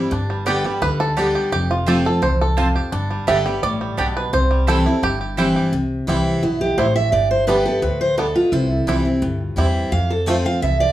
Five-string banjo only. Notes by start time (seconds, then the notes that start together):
Already playing: G3 E4
0.12 D4
0.30 G3
0.47 D5
0.65 G3
0.82 B4
1.00 A4
1.17 D4
1.35 G4
1.52 G4
1.71 F4
1.88 G4
2.06 A4
2.23 C5
2.41 A4
2.57 F4
2.76 G4
2.92 D4
3.11 G3
3.28 E5
3.46 G3
3.63 D5
3.81 G3
3.98 D4
4.17 B4
4.33 C5
4.51 G3
4.68 A4
4.86 E4
5.03 G4
5.21 G4
5.38 G4
5.56 G4
6.08 G3 C4 E4
6.78 G3 C4 E4
7.48 G3 B3 D4
8.18 G3 B3 D4
8.88 G3 C4 E4
9.58 G3 C4 E4
10.28 A3 C4 F4